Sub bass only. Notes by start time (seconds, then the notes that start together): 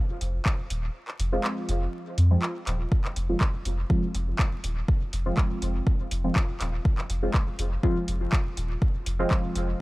0.21 F1
0.70 D#1
1.19 F1
1.69 F1
2.18 F2
2.67 D#1
3.16 F1
3.65 F1
4.15 F1
4.64 D#1
5.13 F1
5.62 F1
6.11 F1
6.60 D#1
7.10 F1
7.59 F1
8.08 F1
8.57 D#1
9.06 F1
9.55 F1